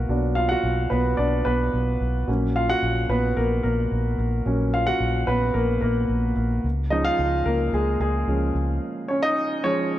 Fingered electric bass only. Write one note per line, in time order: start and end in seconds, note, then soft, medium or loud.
0.09 0.54 B1 medium
0.63 0.86 B1 medium
0.91 1.14 B1 medium
1.19 1.41 B1 medium
1.46 1.68 B1 medium
1.74 1.96 B1 medium
2.01 2.23 B1 medium
2.28 2.73 A#1 medium
2.82 3.05 A#1 medium
3.09 3.32 A#1 medium
3.37 3.59 A#1 medium
3.64 3.87 A#1 medium
3.92 4.14 A#1 medium
4.18 4.41 A#1 medium
4.46 4.91 A#1 medium
5.00 5.23 A#1 medium
5.28 5.50 A#1 medium
5.55 5.77 A#1 medium
5.82 6.05 A#1 medium
6.09 6.32 A#1 medium
6.36 6.59 A#1 medium
6.64 7.09 C#2 medium
7.19 7.41 C#2 medium
7.46 7.68 C#2 medium
7.73 7.95 C#2 medium
8.00 8.23 C#2 medium
8.27 8.50 C#2 medium
8.55 8.77 C#2 medium